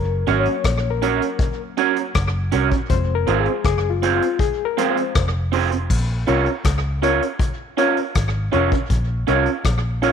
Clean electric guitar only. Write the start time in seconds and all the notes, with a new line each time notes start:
0.27 C#4 F#4 A#4 C#5
1.02 C#4 F#4 A#4 C#5
1.77 C#4 F#4 A#4 C#5
2.52 C#4 F#4 A#4 C#5
2.71 muted clean electric guitar stroke
3.27 C4 F4 G#4 C5
4.02 C4 F4 G#4 C5
4.77 C4 F4 G#4 C5
5.52 C4 F4 G#4 C5
5.71 muted clean electric guitar stroke
6.27 C#4 F4 A#4 C#5
7.02 C#4 F4 A#4 C#5
7.77 C#4 F4 A#4 C#5
8.52 C#4 F4 A#4 C#5
8.71 muted clean electric guitar stroke
9.27 C#4 F4 A#4 C#5
10.02 C#4 F4 A#4 C#5